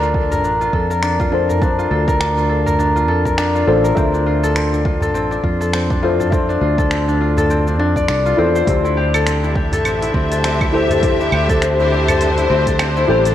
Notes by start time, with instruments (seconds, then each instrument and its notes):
Already playing: fretless electric bass D2, harp D4 A#4, synth stab D4 F4 C5 A5
0.02 harp F4, cabasa
0.14 harp A4, kick
0.32 harp A#4, darbuka dum, cabasa
0.44 fretless electric bass A1, harp D4, cabasa
0.61 harp F4, darbuka tek, cabasa
0.73 fretless electric bass F2, harp A4, kick
0.90 harp A#4, darbuka tek, cabasa
1.03 harp D4, finger snap, cabasa
1.20 harp F4, kick, cabasa
1.31 synth stab D4 F4 A4 C5, harp A4, darbuka tek
1.49 harp A#4, darbuka ka, darbuka dum, cabasa
1.60 synth stab D4 F4 C5 A5, harp D4, kick, cabasa
1.78 harp F4, cabasa
1.91 fretless electric bass D2, harp A4
2.08 harp A#4, kick, cabasa
2.20 harp D4, finger snap, cabasa
2.37 harp F4, cabasa
2.49 harp A4
2.66 harp A#4, darbuka dum, cabasa
2.79 harp D4, cabasa
2.96 harp F4, darbuka ka, cabasa
3.08 fretless electric bass F2, harp A4, darbuka tek
3.25 harp A#4, kick, cabasa
3.38 harp D4, finger snap, cabasa
3.55 harp F4, cabasa
3.66 fretless electric bass A1, synth stab D4 F4 A4 C5, harp A4
3.84 harp A#4, darbuka tek, cabasa
3.95 fretless electric bass D2, harp C4, synth stab F4 A4 C5 E5, kick, cabasa
4.12 harp D4, darbuka ka, cabasa
4.26 harp F4, darbuka tek
4.43 harp A4, cabasa
4.55 harp C4, finger snap, cabasa
4.73 harp D4, cabasa
4.85 harp F4, kick
5.01 harp A4, darbuka dum, cabasa
5.14 fretless electric bass A1, harp C4, cabasa
5.31 harp D4, darbuka tek, cabasa
5.44 fretless electric bass F2, harp F4, kick
5.61 harp A4, darbuka tek, cabasa
5.73 harp C4, finger snap, cabasa
5.90 harp D4, kick, cabasa
6.02 synth stab E4 F4 A4 C5, harp F4, darbuka tek
6.20 harp A4, darbuka ka, darbuka dum, cabasa
6.30 harp C4, synth stab F4 A4 E5, kick, cabasa
6.34 synth stab C5
6.49 harp D4, darbuka ka, cabasa
6.61 fretless electric bass D2, harp F4, darbuka tek
6.78 harp A4, kick, cabasa
6.91 harp C4, finger snap, cabasa
7.08 harp D4, cabasa
7.21 harp F4
7.37 harp A4, darbuka dum, cabasa
7.50 harp C4, cabasa
7.67 harp D4, darbuka ka, cabasa
7.79 fretless electric bass F2, harp D4, darbuka tek
7.96 harp D5, kick, cabasa
8.08 fretless electric bass C2, harp D4, finger snap, cabasa
8.26 harp F4, cabasa
8.37 fretless electric bass E2, harp C4, synth stab E4 F4 A4 C5
8.55 harp C5, darbuka tek, cabasa
8.65 fretless electric bass D2, string section D3, harp C4, synth stab E4 G4 A4, kick, open hi-hat, cabasa
8.69 synth stab C5
8.84 string section D4, harp E4, darbuka ka, cabasa
8.97 harp G4, darbuka tek
9.14 harp A4, open hi-hat, cabasa, claves
9.26 harp C4, string section G4, finger snap, open hi-hat, cabasa
9.44 harp E4, cabasa
9.49 string section E5
9.56 harp G4, kick
9.72 harp A4, open hi-hat, darbuka dum, cabasa
9.85 fretless electric bass A1, harp C4, open hi-hat, cabasa, claves
10.02 harp E4, open hi-hat, darbuka tek, cabasa
10.14 fretless electric bass D2, harp C4, kick
10.32 harp A4, string section C5, open hi-hat, darbuka tek, cabasa
10.44 harp C4, finger snap, open hi-hat, cabasa
10.61 harp E4, kick, cabasa, claves
10.72 synth stab E4 G4 A4 C5, harp G4, darbuka tek
10.89 harp A4, open hi-hat, darbuka ka, darbuka dum, cabasa
11.00 harp C4, synth stab E4 G4 A4, kick, open hi-hat, cabasa
11.05 synth stab C5
11.19 harp E4, darbuka ka, cabasa
11.32 fretless electric bass D2, harp G4, claves
11.49 harp A4, kick, open hi-hat, cabasa
11.62 harp C4, finger snap, open hi-hat, cabasa
11.79 harp E4, cabasa
11.91 harp G4
12.08 harp A4, open hi-hat, darbuka dum, cabasa, claves
12.21 harp C4, open hi-hat, cabasa
12.37 harp E4, open hi-hat, darbuka ka, cabasa
12.50 fretless electric bass D2, harp C4, darbuka tek
12.67 harp A4, kick, open hi-hat, cabasa
12.79 harp C4, finger snap, open hi-hat, cabasa, claves
12.97 harp E4, cabasa
13.08 fretless electric bass A1, synth stab E4 G4 A4 C5, harp G4
13.25 harp A4, open hi-hat, darbuka tek, cabasa